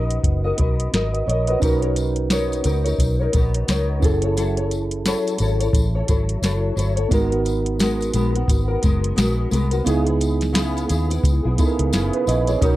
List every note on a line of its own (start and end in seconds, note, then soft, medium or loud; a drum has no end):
0.00 0.17 A#1 medium
0.00 0.44 B3 medium
0.00 1.56 C#4 medium
0.00 1.57 D#4 medium
0.00 0.45 F#4 medium
0.00 1.58 F#4 medium
0.00 0.44 A#4 medium
0.00 0.90 A#4 medium
0.00 0.43 D#5 medium
0.11 closed hi-hat medium
0.24 0.51 F#1 medium
0.24 kick medium
0.24 closed hi-hat medium
0.44 0.57 F#4 soft
0.44 0.58 A#4 soft
0.44 0.58 D#5 medium
0.57 0.87 B1 medium
0.57 0.92 B3 medium
0.57 0.93 F#4 medium
0.57 0.93 A#4 medium
0.57 0.94 D#5 medium
0.57 kick medium
0.57 closed hi-hat medium
0.80 closed hi-hat medium
0.93 1.21 G#1 medium
0.93 1.25 B3 medium
0.93 1.27 F#4 medium
0.93 1.27 A#4 medium
0.93 1.29 D#5 medium
0.93 snare loud
0.93 closed hi-hat medium
1.14 1.27 D#5 medium
1.14 closed hi-hat soft
1.27 1.55 A#1 medium
1.27 1.48 B3 medium
1.27 1.48 F#4 medium
1.27 1.48 A#4 medium
1.27 1.47 C#5 medium
1.27 1.46 D#5 medium
1.27 closed hi-hat medium
1.47 1.61 F#4 soft
1.47 1.62 A#4 medium
1.47 1.81 B4 medium
1.47 1.62 D#5 medium
1.47 closed hi-hat soft
1.60 2.61 B1 loud
1.60 1.82 B3 medium
1.60 3.97 C#4 medium
1.60 3.98 D#4 medium
1.60 1.83 D#4 medium
1.60 3.99 F#4 medium
1.60 1.82 A#4 medium
1.60 1.80 C#5 medium
1.60 kick loud
1.60 closed hi-hat medium
1.60 tambourine soft
1.65 4.00 A#4 medium
1.81 2.30 D#4 soft
1.81 2.30 A#4 medium
1.81 2.30 C#5 medium
1.81 closed hi-hat soft
1.96 closed hi-hat medium
1.96 tambourine soft
2.16 closed hi-hat soft
2.30 2.62 B3 medium
2.30 2.64 D#4 medium
2.30 2.64 A#4 medium
2.30 2.66 C#5 medium
2.30 snare loud
2.30 closed hi-hat medium
2.30 tambourine medium
2.52 closed hi-hat soft
2.52 tambourine soft
2.63 2.93 C#2 medium
2.63 2.85 B3 medium
2.63 2.86 D#4 medium
2.63 2.85 A#4 medium
2.63 2.83 C#5 medium
2.63 closed hi-hat medium
2.63 tambourine soft
2.84 3.21 D#4 soft
2.84 3.20 A#4 medium
2.84 3.18 C#5 medium
2.84 closed hi-hat soft
2.84 tambourine soft
2.98 3.26 B1 medium
2.98 kick medium
2.98 closed hi-hat medium
2.98 tambourine soft
3.19 3.33 D#4 soft
3.19 3.34 A#4 medium
3.19 3.33 C#5 medium
3.32 3.62 A#1 medium
3.32 3.66 B3 medium
3.32 3.67 D#4 medium
3.32 3.68 A#4 medium
3.32 3.69 C#5 medium
3.32 kick medium
3.32 closed hi-hat medium
3.32 tambourine soft
3.54 closed hi-hat medium
3.68 4.04 C#2 medium
3.68 4.02 B3 medium
3.68 4.03 D#4 medium
3.68 4.03 A#4 medium
3.68 4.03 C#5 medium
3.68 snare loud
3.68 closed hi-hat medium
3.68 tambourine medium
4.00 5.13 F#1 loud
4.00 4.23 F#3 medium
4.00 6.72 C#4 medium
4.00 6.73 E4 medium
4.00 4.23 E4 medium
4.00 6.74 G#4 medium
4.00 kick loud
4.00 tambourine soft
4.04 4.24 A4 medium
4.04 6.75 A4 medium
4.04 4.22 C#5 medium
4.04 closed hi-hat medium
4.22 4.36 E4 soft
4.22 4.37 A4 medium
4.22 4.37 C#5 medium
4.22 closed hi-hat medium
4.36 4.57 F#3 medium
4.36 4.58 E4 medium
4.36 4.57 A4 medium
4.36 4.56 C#5 medium
4.36 closed hi-hat medium
4.36 tambourine soft
4.57 5.05 E4 soft
4.57 5.06 A4 medium
4.57 5.05 C#5 medium
4.57 closed hi-hat soft
4.71 closed hi-hat medium
4.71 tambourine soft
4.91 closed hi-hat soft
5.05 5.38 F#3 medium
5.05 5.40 E4 medium
5.05 5.40 A4 medium
5.05 5.41 C#5 loud
5.05 snare loud
5.05 closed hi-hat medium
5.05 tambourine medium
5.27 closed hi-hat soft
5.27 tambourine soft
5.38 5.67 G#1 medium
5.38 5.60 F#3 medium
5.38 5.61 E4 medium
5.38 5.60 A4 medium
5.38 5.59 C#5 medium
5.38 closed hi-hat medium
5.38 tambourine soft
5.60 5.96 E4 soft
5.60 5.95 A4 medium
5.60 5.94 C#5 medium
5.60 closed hi-hat soft
5.60 tambourine soft
5.73 6.01 A1 medium
5.73 kick medium
5.73 closed hi-hat medium
5.73 tambourine soft
5.95 6.08 E4 soft
5.95 6.08 A4 medium
5.95 6.09 C#5 medium
6.07 6.36 G#1 medium
6.07 6.41 F#3 medium
6.07 6.42 E4 medium
6.07 6.43 A4 medium
6.07 6.44 C#5 medium
6.07 kick medium
6.07 closed hi-hat medium
6.07 tambourine soft
6.29 closed hi-hat medium
6.42 6.70 F#1 medium
6.42 6.75 F#3 medium
6.42 6.76 E4 medium
6.42 6.77 A4 medium
6.42 6.78 C#5 medium
6.42 snare loud
6.42 closed hi-hat medium
6.42 tambourine medium
6.76 7.04 G1 medium
6.76 6.97 F#3 medium
6.76 6.98 E4 medium
6.76 6.97 A4 medium
6.76 6.95 C#5 medium
6.76 closed hi-hat medium
6.76 tambourine soft
6.96 7.12 E4 soft
6.96 7.12 A4 medium
6.96 7.11 C#5 medium
6.96 closed hi-hat soft
7.09 8.11 G#1 loud
7.09 7.32 G#3 medium
7.09 9.81 B3 medium
7.09 7.32 B3 medium
7.09 9.82 D#4 medium
7.09 7.31 F#4 medium
7.09 9.83 F#4 medium
7.09 kick loud
7.09 closed hi-hat medium
7.09 tambourine soft
7.13 7.29 A#4 medium
7.13 9.83 A#4 medium
7.30 7.78 B3 soft
7.30 7.79 F#4 medium
7.30 7.79 A#4 medium
7.30 closed hi-hat soft
7.45 closed hi-hat medium
7.45 tambourine soft
7.66 closed hi-hat soft
7.79 8.12 G#3 medium
7.79 8.13 B3 medium
7.79 8.14 F#4 medium
7.79 8.15 A#4 medium
7.79 snare loud
7.79 closed hi-hat medium
7.79 tambourine medium
8.01 closed hi-hat soft
8.01 tambourine soft
8.13 8.42 A#1 medium
8.13 8.35 G#3 medium
8.13 8.35 B3 medium
8.13 8.35 F#4 medium
8.13 8.33 A#4 medium
8.13 closed hi-hat medium
8.13 tambourine soft
8.34 8.70 B3 soft
8.34 8.68 F#4 medium
8.34 8.66 A#4 medium
8.34 closed hi-hat soft
8.48 8.76 G#1 medium
8.48 kick medium
8.48 closed hi-hat medium
8.48 tambourine soft
8.68 8.82 B3 soft
8.68 8.83 F#4 medium
8.68 8.82 A#4 medium
8.82 9.11 F#1 medium
8.82 9.15 G#3 medium
8.82 9.16 B3 medium
8.82 9.16 F#4 medium
8.82 9.17 A#4 medium
8.82 kick loud
8.82 closed hi-hat medium
8.82 tambourine soft
9.04 closed hi-hat medium
9.16 9.45 A#1 medium
9.16 9.49 G#3 medium
9.16 9.50 B3 medium
9.16 9.51 F#4 loud
9.16 9.52 A#4 medium
9.16 snare loud
9.16 closed hi-hat medium
9.16 tambourine medium
9.50 9.80 C2 loud
9.50 9.72 G#3 medium
9.50 9.72 B3 medium
9.50 9.71 F#4 medium
9.50 9.70 A#4 medium
9.50 closed hi-hat medium
9.50 tambourine soft
9.71 9.84 B3 soft
9.71 9.86 F#4 medium
9.71 9.85 A#4 medium
9.71 closed hi-hat medium
9.71 tambourine soft
9.84 10.86 C#2 loud
9.84 10.06 C#3 medium
9.84 11.54 B3 medium
9.84 10.06 B3 medium
9.84 11.55 D#4 medium
9.84 10.06 E4 medium
9.84 11.55 E4 medium
9.84 10.03 G#4 medium
9.84 closed hi-hat medium
9.84 tambourine soft
9.89 11.56 G#4 medium
10.04 10.52 B3 soft
10.04 10.53 E4 medium
10.04 10.54 G#4 medium
10.04 closed hi-hat soft
10.21 closed hi-hat medium
10.21 tambourine soft
10.41 snare soft
10.41 closed hi-hat soft
10.41 tambourine soft
10.53 10.86 C#3 medium
10.53 10.87 B3 medium
10.53 10.88 E4 medium
10.53 10.89 G#4 medium
10.53 snare loud
10.53 closed hi-hat medium
10.53 tambourine medium
10.77 closed hi-hat soft
10.77 tambourine soft
10.87 11.17 D#2 medium
10.87 11.09 C#3 medium
10.87 11.10 B3 medium
10.87 11.09 E4 medium
10.87 11.08 G#4 medium
10.87 closed hi-hat medium
10.87 tambourine medium
11.09 11.45 B3 soft
11.09 11.44 E4 medium
11.09 11.42 G#4 medium
11.09 closed hi-hat medium
11.09 tambourine soft
11.24 11.40 C#2 medium
11.24 kick medium
11.24 closed hi-hat medium
11.24 tambourine soft
11.43 11.56 B1 medium
11.43 11.57 B3 soft
11.43 11.58 E4 soft
11.43 11.58 G#4 medium
11.57 11.91 C#3 medium
11.57 11.92 B3 medium
11.57 12.61 B3 medium
11.57 12.61 D#4 medium
11.57 11.93 E4 medium
11.57 12.62 E4 medium
11.57 11.93 G#4 medium
11.57 11.67 A4 soft
11.57 kick loud
11.57 closed hi-hat medium
11.57 tambourine soft
11.67 11.97 A#4 medium
11.79 11.90 C#2 medium
11.79 closed hi-hat medium
11.92 12.09 F#1 medium
11.92 12.25 C#3 medium
11.92 12.26 B3 medium
11.92 12.27 E4 medium
11.92 12.28 G#4 medium
11.92 snare loud
11.92 closed hi-hat medium
11.92 tambourine medium
12.13 12.27 B4 medium
12.13 closed hi-hat soft
12.26 12.55 A#1 medium
12.26 12.47 C#3 medium
12.26 12.48 B3 medium
12.26 12.48 E4 medium
12.26 12.46 G#4 medium
12.26 12.47 D#5 medium
12.26 closed hi-hat medium
12.26 tambourine soft
12.47 12.60 B3 soft
12.47 12.62 E4 medium
12.47 12.61 G#4 medium
12.47 12.76 C#5 medium
12.47 closed hi-hat medium
12.47 tambourine soft
12.60 12.76 B1 loud
12.60 12.76 B3 medium
12.60 12.76 C#4 medium
12.60 12.76 D#4 medium
12.60 12.76 F#4 medium
12.60 12.76 A#4 medium
12.60 12.76 C#5 medium
12.60 kick loud
12.60 closed hi-hat medium
12.60 tambourine soft
12.65 12.76 A#4 medium